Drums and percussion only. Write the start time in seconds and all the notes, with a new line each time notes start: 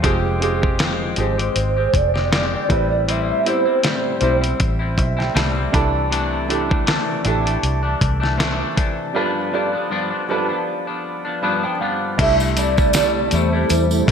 0.04 kick, closed hi-hat
0.42 closed hi-hat
0.63 kick
0.79 snare, closed hi-hat
1.16 closed hi-hat
1.39 closed hi-hat
1.56 closed hi-hat
1.94 kick, closed hi-hat
2.16 snare
2.33 snare, closed hi-hat
2.70 kick, closed hi-hat
3.09 closed hi-hat
3.46 closed hi-hat
3.83 snare, closed hi-hat
4.21 closed hi-hat
4.44 closed hi-hat
4.60 kick, closed hi-hat
4.98 kick, closed hi-hat
5.20 snare
5.37 snare, closed hi-hat
5.74 kick, closed hi-hat
6.12 closed hi-hat
6.50 closed hi-hat
6.71 kick
6.87 snare, closed hi-hat
7.25 closed hi-hat
7.47 closed hi-hat
7.63 closed hi-hat
8.01 kick, closed hi-hat
8.23 snare
8.40 snare, closed hi-hat
8.77 kick, closed hi-hat
12.19 kick, closed hi-hat, crash
12.40 tambourine
12.57 closed hi-hat, tambourine
12.78 kick, tambourine
12.93 snare, closed hi-hat, tambourine
13.31 closed hi-hat, tambourine
13.69 closed hi-hat, tambourine
13.91 tambourine
14.08 kick